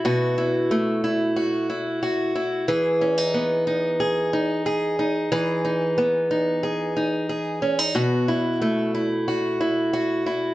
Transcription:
X:1
M:4/4
L:1/16
Q:1/4=91
K:E
V:1 name="Steel-string acoustic guitar"
[B,,A,EF]2 E2 A,2 E2 F2 E2 F2 E2 | [E,G]2 C D B,2 D2 G2 D2 G2 D2 | [E,G]2 D2 B,2 D2 G2 D2 G2 C D | [B,,F]2 E2 A,2 E2 F2 E2 F2 E2 |]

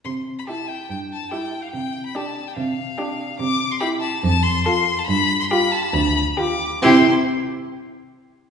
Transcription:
X:1
M:4/4
L:1/16
Q:1/4=141
K:C
V:1 name="Violin"
c'3 b a2 g2 g2 a2 g3 f | g3 b a3 g f8 | d'3 c' b2 a2 a2 c'2 c'3 a | b3 c' b2 a2 b2 b2 d'4 |
c'2 z12 z2 |]
V:2 name="Violin"
z4 G4 z4 G4 | z4 G4 z4 G4 | z4 G4 z4 A4 | z4 G4 z4 G4 |
G2 z12 z2 |]
V:3 name="Viola"
z4 E4 z4 E4 | z4 D4 z4 D4 | z4 E4 z4 F4 | z4 F4 z4 F4 |
E2 z12 z2 |]
V:4 name="Cello" clef=bass
C,4 z4 G,,4 z4 | C,4 z4 C,4 z4 | C,4 z4 F,,4 z4 | G,,4 z4 D,,4 z4 |
C,2 z12 z2 |]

